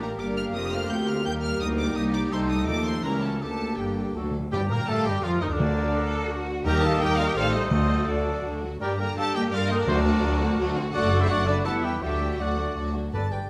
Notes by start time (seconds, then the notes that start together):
Already playing: A1 A2 A#3 D4 G4 A#4
0.01 G4 A#4 A#5
0.19 G1 G2 A#3 D4 G4 A#4 D5 D6
0.38 F5 F6
0.54 F1 F2 A3 G4 C5 D#5 D#6
0.73 F5 F6
0.90 D2 C4 F4 A#4 G5 G6
1.08 F5 F6
1.25 D#2 G3 A#3 D#4 A#4 G5 G6
1.43 F5 F6
1.61 D2 A#3 D#4 G4 D#5 D#6
1.78 D5 D6
1.95 C2 G3 G4 D#5 D#6
2.13 D5 D6
2.30 C2 A3 D#4 A4 C5 C6
2.48 D#5 D#6
2.67 D#2 F3 A4 D5 D6
2.85 C5 C6
3.03 C#2 E3 G3 C#4 E4 G4 A#4 A#5
3.22 A3 F#4 A4 A5
3.40 D2 D3 A#3 D4 G4 A4 A5
3.77 G1 G2 A#3 G4 G5
4.15 D2 D3 F#3 A3 D4 F#4 A4
4.23 D3
4.31 D3
4.40 D3
4.52 G2 G3 G4 D5 G5
4.70 A#2 A#3 A#4 G5 A#5
4.88 A2 A3 G4 A4 F5 A5
5.06 G2 G3 G4 D#5 G5
5.23 F2 F3 F4 A#4 D5 F5
5.41 D#2 D#3 D#4 C5 D#5
5.50 D2 D3 D4 A#4 D5
5.60 D3 F#4
5.96 A4
6.31 F#4
6.64 D#2 D#3 G3 A#3 D#4 G4 A#4 D#5 G5 A#5
6.83 D#3 G3 A#3 A4 A#4 F5 A5
7.01 D#2 D#3 G3 D#4 G4 A#4 D#5 G5
7.18 D#3 G3 A#3 F4 A#4 D5 F5
7.26 G4 D#5 G5
7.36 A1 D#3 A3 C4 F4 A4 C5 D5 F5
7.53 G3 A3 D#4 C5 D#5
7.71 D2 D3 A3 D4 D#4 F#4 A4 C5 D#5
7.89 F#3 A3 F#4
8.07 D2 D3 A3 D4 A4 D5
8.26 F#3 A3 F#4
8.45 D2 D3 A3 D4
8.62 F#3 A3 F#4
8.80 G2 G3 D4 G4 A#4 D5 G5
8.98 D3 A#3 G4 A#4 G5 A#5
9.16 G2 G3 D4 G4 A4 F5 A5
9.34 D3 A#3 G4 D#5 G5
9.50 G2 G3 D4 A#4 D5 F5
9.54 F4
9.70 D3 A#3 D#4 G4 C5 D#5
9.79 D4 A#4 D5
9.87 D2 D3 F#3 A3 D4 F#4 C5
10.05 D3 A3 C4 F#4
10.23 D2 F#3 A3 D4
10.41 D3 A3 C4 F#4
10.58 D2 F#3 A3 D4
10.76 D3 A3 C4 F#4
10.94 F#1 F#3 A3 D4 F#4 A4 D5 F#5
11.12 D3 F#3 D4 F#4
11.21 E4 C5 E5
11.29 F#1 F#3 A3 D4 F#4 D5 F#5
11.47 D3 F#3 D4 F#4 B4 D5
11.64 E2 E3 G3 B3 E4 A4 B4 F#5 A5
11.82 E3 G3 G4 E5 G5
11.86 B3
12.00 D2 F#3 A3 D4 F#4 G4 A4 D5 E5 G5
12.21 D3 F#3 D4 F#4
12.40 D2 F#3 A3 D4 F#4 A4 D5 F#5
12.58 D3 F#3 D4 F#4
12.76 D2 F#3 A3 F#4 A4
12.95 D3 F#3 D4 F#4
13.13 G1 G2 A4 B4 D5 G5 A5
13.31 G1 G2 G4 B4 D5 G5